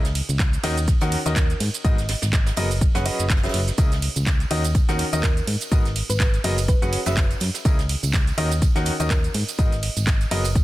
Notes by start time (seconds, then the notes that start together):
Already playing: C#2
0.05 snare, closed hi-hat, shaker
0.15 closed hi-hat, open hi-hat, ride
0.29 C#2, closed hi-hat, shaker
0.39 kick, snare, clap, closed hi-hat, shaker
0.53 closed hi-hat, shaker
0.63 D#2 D#3 C#4 D#4 F#4 A#4 D#5, snare, closed hi-hat, open hi-hat, ride
0.77 closed hi-hat, shaker
0.88 kick, snare, closed hi-hat, shaker
1.01 D#2 D#3 C#4 D#4 F#4 A#4 F#5, snare, closed hi-hat, shaker
1.12 open hi-hat, ride
1.26 D#2 D#3 C#4 D#4 F#4 A#4 D#5, snare, closed hi-hat, shaker
1.36 A#4, kick, snare, clap, closed hi-hat, shaker
1.50 closed hi-hat, shaker
1.60 G#2, closed hi-hat, open hi-hat, ride
1.74 closed hi-hat, shaker
1.84 G#1 G#2 B3 F#4 G#4 A#4 D#5, kick, closed hi-hat, shaker
1.98 snare, closed hi-hat, shaker
2.09 snare, closed hi-hat, open hi-hat, ride
2.22 G#1, snare, closed hi-hat, shaker
2.33 kick, snare, clap, closed hi-hat, shaker
2.46 snare, closed hi-hat, shaker
2.56 F#1 F#3 B3 F#4 G#4 A#4 D#5, closed hi-hat, open hi-hat, ride
2.71 closed hi-hat, open hi-hat, shaker
2.81 kick, closed hi-hat, shaker
2.95 F#1 F#3 C#4 F#4 G#4 B4 F#5, snare, closed hi-hat, shaker
3.06 F#3 C#4 F#4 G#4 B4 D#5, closed hi-hat, open hi-hat, ride
3.19 F#1, closed hi-hat, shaker
3.29 kick, snare, clap, closed hi-hat, shaker
3.37 snare, closed hi-hat
3.44 F#3 C#4 F#4 G#4 B4 E5, snare, closed hi-hat, shaker
3.49 snare, closed hi-hat
3.54 F#1, snare, closed hi-hat, open hi-hat, ride
3.68 snare, closed hi-hat, shaker
3.78 C#2 C#3 C#4 E4 G#4 A#4 D#5, kick, closed hi-hat, tambourine, shaker
3.92 snare, closed hi-hat, tambourine, shaker
4.02 closed hi-hat, open hi-hat, ride
4.16 C#2, closed hi-hat, tambourine, shaker
4.26 kick, snare, clap, closed hi-hat, tambourine, shaker
4.40 closed hi-hat, tambourine, shaker
4.51 D#2 D#3 C#4 D#4 F#4 A#4 D#5, closed hi-hat, open hi-hat, ride
4.64 closed hi-hat, tambourine, shaker
4.74 kick, closed hi-hat, tambourine, shaker
4.89 D#2 D#3 C#4 D#4 F#4 A#4 F#5, snare, closed hi-hat, tambourine, shaker
4.99 closed hi-hat, open hi-hat, ride
5.13 D#2 D#3 C#4 D#4 F#4 A#4 D#5, closed hi-hat, tambourine, shaker
5.23 A#4, kick, snare, clap, closed hi-hat, shaker
5.37 closed hi-hat, tambourine, shaker
5.47 G#2, closed hi-hat, open hi-hat, ride
5.61 closed hi-hat, tambourine, shaker
5.71 G#1 G#2 B3 F#4 G#4 A#4 D#5, kick, closed hi-hat, tambourine, shaker
5.85 snare, closed hi-hat, tambourine, shaker
5.96 closed hi-hat, open hi-hat, ride
6.10 G#1 B4, closed hi-hat, tambourine, shaker
6.20 B4, kick, snare, clap, closed hi-hat, shaker
6.33 closed hi-hat, tambourine, shaker
6.44 F#1 F#3 B3 F#4 G#4 A#4 D#5, closed hi-hat, open hi-hat, ride
6.58 open hi-hat, tambourine, shaker
6.68 B4, kick, closed hi-hat, tambourine, shaker
6.82 F#1 F#3 C#4 F#4 G#4 B4 F#5, closed hi-hat, tambourine, shaker
6.93 closed hi-hat, open hi-hat, ride
7.06 F#1 F#3 C#4 F#4 G#4 B4 E5, snare, closed hi-hat, tambourine, shaker
7.17 kick, snare, clap, closed hi-hat, shaker
7.31 closed hi-hat, tambourine, shaker
7.40 F#2, snare, closed hi-hat, open hi-hat, ride
7.54 snare, closed hi-hat, tambourine, shaker
7.65 C#2 C#3 C#4 E4 G#4 A#4 D#5, kick, closed hi-hat, tambourine, shaker
7.79 snare, closed hi-hat, tambourine, shaker
7.89 closed hi-hat, open hi-hat, ride
8.03 C#2, closed hi-hat, tambourine, shaker
8.13 kick, snare, clap, closed hi-hat, shaker
8.27 closed hi-hat, tambourine, shaker
8.38 D#2 D#3 C#4 D#4 F#4 A#4 D#5, closed hi-hat, open hi-hat, ride
8.51 closed hi-hat, tambourine, shaker
8.62 kick, closed hi-hat, tambourine, shaker
8.75 D#2 D#3 C#4 D#4 F#4 A#4 F#5, snare, closed hi-hat, tambourine, shaker
8.85 closed hi-hat, open hi-hat, ride
9.00 D#2 D#3 C#4 D#4 F#4 A#4 D#5, closed hi-hat, tambourine, shaker
9.10 A#4, kick, snare, clap, closed hi-hat, tambourine, shaker
9.24 closed hi-hat, tambourine, shaker
9.34 G#2, closed hi-hat, open hi-hat, ride
9.48 closed hi-hat, tambourine, shaker
9.58 G#1 G#2 B3 F#4 G#4 A#4 D#5, kick, closed hi-hat, tambourine, shaker
9.72 snare, closed hi-hat, tambourine, shaker
9.83 closed hi-hat, open hi-hat, ride
9.97 G#1, tambourine, shaker
10.07 kick, snare, clap, closed hi-hat, shaker
10.21 closed hi-hat, tambourine, shaker
10.31 F#1 F#3 B3 F#4 G#4 A#4 D#5, closed hi-hat, open hi-hat, ride
10.44 open hi-hat, tambourine, shaker
10.55 kick, closed hi-hat, tambourine, shaker